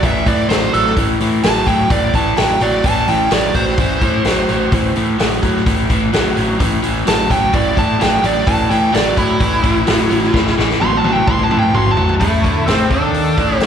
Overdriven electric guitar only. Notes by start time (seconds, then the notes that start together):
0.03 A2 E3
0.26 A2 E3
0.50 A2 F#3
0.73 A2 F#3
0.97 A2 E3
1.21 A2 E3
1.44 A2 F#3
1.67 A2 F#3
1.91 A2 E3
2.14 A2 E3
2.38 A2 F#3
2.61 A2 F#3
2.85 A2 E3
3.09 A2 E3
3.31 A2 F#3
3.54 A2 F#3
3.79 A2 E3
4.02 A2 E3
4.25 A2 F#3
4.49 A2 F#3
4.73 A2 E3
4.95 A2 E3
5.18 A2 F#3
5.42 A2 F#3
5.66 A2 E3
5.89 A2 E3
6.12 A2 F#3
6.36 A2 F#3
6.59 A2 E3
6.83 A2 E3
7.06 A2 F#3
7.30 A2 F#3
7.52 A2 E3
7.76 A2 E3
7.99 A2 F#3
8.22 A2 F#3
8.47 A2 E3
8.70 A2 E3
8.92 A2 F#3
9.16 A2 F#3
9.39 A2 E3
9.63 A2 E3
9.87 A2 F#3
10.10 A2 F#3
10.33 A2 E3
10.58 A2 E3
10.81 A2 F#3
11.05 A2 F#3
11.28 A2 E3
11.51 A2 E3
11.74 A2 F#3
11.98 A2 F#3
12.22 A2
12.45 D3
12.68 A2
12.91 D#3
13.37 A2